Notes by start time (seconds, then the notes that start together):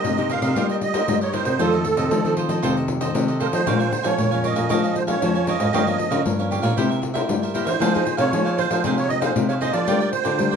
Already playing: A#4 C5 D#5
0.04 G2 C3 A#3 D#4 G4, pandeiro
0.17 A#3 D#4 G4 A#4 C5 D#5, pandeiro
0.30 D#4 A#4 C5 D#5 F5, pandeiro
0.42 C3 A#4 C5 D#5, pandeiro
0.56 C3 G3 A#3 D#4 G4 A#4 C5 D#5, pandeiro
0.69 A#4 C5 D#5, pandeiro
0.81 D#5, muted cavaquinho stroke, pandeiro
0.94 A#3 D#4 G4 A#4 C5 D#5, pandeiro
1.08 G2 G3, pandeiro
1.21 A#4 C5 C#5 D#5, pandeiro
1.32 A#3 D#4 G4 A#4 C5 D#5, pandeiro
1.45 C3 A#4 C5 D#5, pandeiro
1.59 F2 D#3 F3 A3 C4 F4 A4 C5 D#5, pandeiro
1.73 D#3 A3 C4 A4 C5 D#5, pandeiro
1.85 muted cavaquinho stroke, pandeiro
1.97 C3 A4 C5 D#5, pandeiro
2.11 C3 D#3 F3 A3 C4, pandeiro
2.25 D#3 A3 C4 A4 C5 D#5, pandeiro
2.37 F4 A4 C5 D#5, pandeiro
2.49 F3 A4 C5 D#5, pandeiro
2.62 F2 C3 D#3 A3 C4 F4 A4 C5 D#5, pandeiro
2.76 A4 C5 D#5, pandeiro
2.88 muted cavaquinho stroke, pandeiro
3.01 D#3 A3 C4 A4 C5 D#5, pandeiro
3.14 C3, pandeiro
3.28 A4 C5 D#5, pandeiro
3.40 D#3 A3 C4 F4 A4 A#4 C5 D#5, pandeiro
3.52 F3 A4 C5 D#5, pandeiro
3.66 A#2 F3 G#3 C#4 A#4 C#5 F5 G#5, pandeiro
3.79 C#5 F5 G#5, pandeiro
3.91 muted cavaquinho stroke, pandeiro
4.03 F3 G#3 C#4 C#5 F5 G#5, pandeiro
4.18 F2 A#2, pandeiro
4.31 F3 G#3 C#4 C#5 F5 G#5, pandeiro
4.44 A#4 C#5 D#5 F5 G#5, pandeiro
4.55 A#2 C#5 F5 G#5, pandeiro
4.69 A#2 F3 G#3 C#4 A#4 C#5 F5 G#5, pandeiro
4.82 C#5 F5 G#5, pandeiro
4.95 C5, muted cavaquinho stroke, pandeiro
5.07 F3 G#3 C#4 C#5 F5 G#5, pandeiro
5.22 F2 F3, pandeiro
5.35 C#5 F5 G#5, pandeiro
5.47 F3 G#3 C#4 A#4 C#5 D#5 F5 G#5, pandeiro
5.60 G#2 C#5 F5 G#5, pandeiro
5.73 G2 F3 A#3 C#4 G4 A#4 C#5 F5, pandeiro
5.87 F3 A#3 C#4 A#4 C#5 F5, pandeiro
5.98 muted cavaquinho stroke, pandeiro
6.11 C#3 A#4 C#5 F5, pandeiro
6.26 G2 F3 A#3 C#4, pandeiro
6.39 F3 A#3 C#4 A#4 C#5 F5, pandeiro
6.51 G4 A#4 C#5 F5, pandeiro
6.62 A#2 A#4 C#5 F5, pandeiro
6.77 C3 A#3 E4 G4 A#4 C5 E5, pandeiro
6.89 A#4 C5 E5, pandeiro
7.02 muted cavaquinho stroke, pandeiro
7.14 A#3 E4 G4 A#4 C5 E5, pandeiro
7.29 G2 G3, pandeiro
7.42 A#4 C5 E5, pandeiro
7.54 A#3 E4 G4 A#4 C5 E5, pandeiro
7.65 E3 A#4 C5 E5, pandeiro
7.79 F3 A#3 D#4 G#4 C5 F5, pandeiro
7.93 A#3 D#4 G#4 C5 F5, pandeiro
8.05 muted cavaquinho stroke, pandeiro
8.17 C3 G#4 C5 C#5 F5, pandeiro
8.33 C3 F3 A#3 D#4 G#4, pandeiro
8.45 G#4 C5 F5, pandeiro
8.57 D#4 G#4 C5 F5, pandeiro
8.70 F3 G#4 C5 F5, pandeiro
8.84 C3 F3 A#3 D#4 G#4 C5 F5, pandeiro
8.97 G#4 C5 C#5 F5, pandeiro
9.09 D#5, muted cavaquinho stroke, pandeiro
9.21 A#3 D#4 G#4 C5 F5, pandeiro
9.36 C3, pandeiro
9.48 G#4 C5 C#5 F5, pandeiro
9.61 A#3 D#4 G#4 C5 D#5 F5, pandeiro
9.73 F3 G#4 C5 D5 F5, pandeiro
9.87 G3 D4 F4 A#4 D5 G5, pandeiro
10.00 A#4 D5 G5, pandeiro
10.12 C5, muted cavaquinho stroke, pandeiro
10.24 D3 D4 F4 A#4 D5 G5, pandeiro
10.39 D3 G3, pandeiro
10.51 A#4 D5 G5, pandeiro